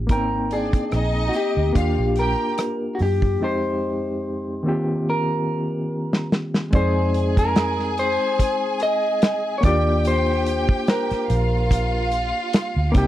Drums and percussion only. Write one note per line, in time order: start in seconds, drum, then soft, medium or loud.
0.09 kick loud
0.09 closed hi-hat medium
0.51 closed hi-hat medium
0.73 kick medium
0.73 closed hi-hat medium
0.92 cross-stick medium
0.92 closed hi-hat medium
1.15 cross-stick soft
1.34 closed hi-hat medium
1.75 kick medium
1.75 closed hi-hat medium
2.16 closed hi-hat medium
2.58 cross-stick medium
2.58 closed hi-hat medium
2.99 open hi-hat medium
3.22 kick medium
6.13 snare medium
6.32 snare loud
6.54 snare medium
6.73 kick loud
6.73 closed hi-hat medium
7.14 closed hi-hat medium
7.37 kick medium
7.37 closed hi-hat medium
7.56 snare loud
7.56 closed hi-hat medium
7.79 snare soft
7.98 closed hi-hat medium
8.39 kick medium
8.39 closed hi-hat medium
8.80 closed hi-hat medium
9.22 snare loud
9.22 closed hi-hat loud
9.63 kick loud
9.63 closed hi-hat medium
10.05 closed hi-hat medium
10.46 closed hi-hat medium
10.69 kick loud
10.88 snare loud
10.88 closed hi-hat medium
11.11 snare soft
11.11 closed hi-hat medium
11.30 closed hi-hat medium
11.71 kick medium
11.71 closed hi-hat medium
12.12 closed hi-hat medium
12.53 snare loud
12.53 closed hi-hat loud
12.94 kick loud
12.94 closed hi-hat medium